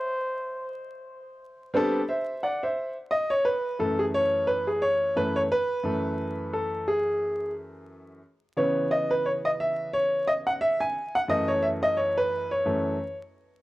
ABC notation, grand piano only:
X:1
M:4/4
L:1/16
Q:"Swing 16ths" 1/4=88
K:F#dor
V:1 name="Grand piano"
z8 z2 [=G,B,=C=DA]2 [=ce]2 [=df] [ce]- | [=ce] z d ^c B2 A G c2 B G c2 B c | B6 A2 G4 z4 | z2 c2 d B c d e2 c2 d f e g- |
g f d c e d c B2 c4 z3 |]
V:2 name="Grand piano" clef=bass
z16 | z6 [F,,E,A,]8 [F,,E,A,]2 | z2 [F,,E,A,]12- [F,,E,A,]2 | z2 [C,E,B,]12- [C,E,B,]2 |
z2 [F,,E,A,]8 [F,,E,A,]2 z4 |]